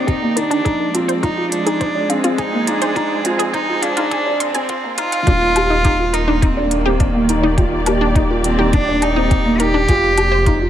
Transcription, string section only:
0.00 0.65 D#3 medium
0.00 2.48 A#3 medium
0.00 0.66 G4 medium
0.00 1.87 D5 medium
0.65 5.27 F3 medium
0.75 5.27 G#3 medium
1.53 6.40 C4 medium
1.66 5.27 G#4 medium
5.27 9.88 D#3 medium
5.40 10.70 A#3 medium
6.26 10.70 G4 medium
6.51 10.70 D5 medium
9.88 10.70 C3 medium
10.07 10.70 G#3 medium
10.19 10.70 F4 medium
10.40 10.70 C5 medium

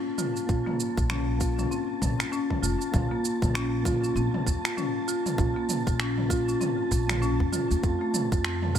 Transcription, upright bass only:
0.49 0.60 A#1 medium
0.98 1.63 A#1 medium
2.02 2.13 A#1 medium
2.63 2.74 F1 medium
2.94 3.05 A#1 medium
3.42 4.08 A#1 medium
4.16 4.27 A#1 medium
4.47 4.58 D#2 medium
5.38 5.49 A#1 loud
5.87 6.53 A#1 medium
6.91 7.42 A#1 medium
7.40 7.57 F2 medium
7.71 7.78 D#2 medium
7.83 7.94 F2 medium
8.32 8.79 F2 medium

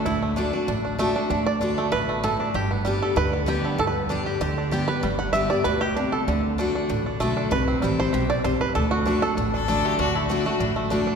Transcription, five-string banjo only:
0.00 0.22 A3 medium
0.06 0.21 E4 medium
0.22 0.65 A3 medium
0.37 0.53 D4 medium
0.54 0.68 D4 medium
0.68 0.85 D4 medium
0.85 1.16 D4 medium
0.99 1.44 A3 medium
1.16 1.30 D4 medium
1.30 1.61 D4 medium
1.46 1.61 D5 loud
1.61 1.92 D4 medium
1.78 2.08 A3 medium
1.92 2.23 B4 loud
2.09 2.52 A3 medium
2.24 2.40 A4 medium
2.40 3.02 D4 medium
2.55 2.70 G4 medium
2.71 3.33 B3 medium
2.85 3.82 G3 medium
3.02 3.17 A4 loud
3.17 3.49 B4 loud
3.33 3.82 B3 medium
3.48 3.80 G4 medium
3.65 4.07 D3 medium
3.79 3.87 A4 medium
3.87 4.02 B4 medium
4.10 4.58 D4 medium
4.26 4.40 G4 medium
4.41 4.71 G4 medium
4.58 5.18 D4 medium
4.72 5.16 G4 medium
4.88 5.17 B4 medium
5.03 5.48 G3 medium
5.19 5.32 F#5 medium
5.33 5.50 E5 medium
5.50 5.65 D5 loud
5.64 5.82 B4 loud
5.81 6.13 G4 loud
5.96 6.28 D4 medium
6.12 6.85 A4 medium
6.28 6.72 D3 medium
6.59 6.74 D4 medium
6.75 6.89 D4 medium
6.90 7.05 D4 medium
7.06 7.36 D4 medium
7.20 7.52 A3 medium
7.37 7.51 D4 medium
7.52 7.96 B4 loud
7.68 8.10 C4 medium
7.82 8.26 G3 medium
8.00 8.29 C5 loud
8.13 8.57 G4 medium
8.30 8.44 D5 loud
8.44 8.60 C5 medium
8.61 8.75 B4 medium
8.75 8.92 A4 medium
8.91 9.22 F#4 loud
9.06 9.36 D4 medium
9.22 9.37 A4 medium
9.37 9.53 D4 medium
9.54 9.67 D4 medium
9.68 9.98 D4 medium
9.85 10.14 A3 medium
9.99 10.29 D4 medium
10.16 10.45 A3 medium
10.30 10.59 D4 medium
10.46 10.75 A3 medium
10.60 10.90 D4 medium
10.76 11.15 A3 medium
10.91 11.06 D4 medium
11.07 11.15 D4 medium

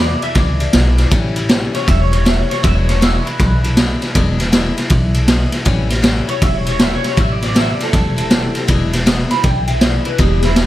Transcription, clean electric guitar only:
0.00 0.22 D5 medium
0.23 0.36 E5 medium
0.36 1.10 D5 medium
1.75 1.87 C#5 loud
1.87 2.00 E5 loud
2.01 2.11 C#5 medium
2.12 2.25 C#5 loud
2.25 2.38 E5 medium
2.38 2.49 C#5 medium
2.50 2.63 C#5 medium
2.63 2.75 E5 medium
2.75 2.88 C#5 loud
2.89 3.02 C#5 medium
3.02 3.14 E5 loud
3.14 3.26 C#5 medium
3.26 4.37 B4 medium
6.30 6.42 C#5 loud
6.42 6.55 E5 loud
6.55 6.67 C#5 loud
6.69 6.80 C#5 loud
6.82 6.93 E5 medium
6.95 7.05 C#5 medium
7.07 7.18 C#5 medium
7.18 7.30 E5 loud
7.32 7.43 D5 medium
7.44 7.56 D5 medium
7.58 7.71 E5 loud
7.71 7.82 D5 medium
7.83 8.67 A4 loud
9.31 9.44 B5 loud
9.45 9.68 G5 medium
9.69 9.82 E5 loud
9.82 10.06 D5 medium
10.06 10.19 B4 medium
10.20 10.44 G4 medium
10.44 10.57 E4 medium

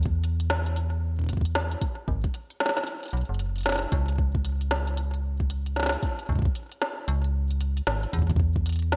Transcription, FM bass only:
0.00 1.76 E2 medium
2.08 2.27 G#1 medium
3.13 3.24 B1 medium
3.29 3.86 F#1 medium
3.92 5.97 C#2 medium
6.29 6.48 C#2 medium
7.08 7.81 C#2 loud
7.87 8.06 G#1 medium
8.13 8.96 E2 loud

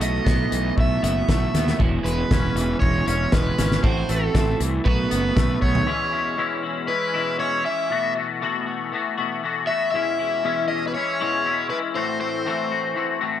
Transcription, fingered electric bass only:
0.00 0.19 B1 medium
0.27 0.45 B1 medium
0.52 0.70 B1 medium
0.78 0.96 B1 loud
1.03 1.21 F#1 medium
1.29 1.47 B1 medium
1.54 1.72 D#2 medium
1.80 1.98 E1 medium
2.05 2.23 E1 medium
2.31 2.49 E1 medium
2.55 2.74 E1 medium
2.82 3.00 E1 medium
3.07 3.25 E1 loud
3.33 3.51 E1 medium
3.59 3.77 G#1 medium
3.84 4.02 A1 medium
4.09 4.27 A1 medium
4.35 4.53 A1 medium
4.61 4.79 C2 medium
4.86 5.04 B1 loud
5.12 5.30 F#1 medium
5.37 5.55 B1 medium
5.62 5.80 B1 medium

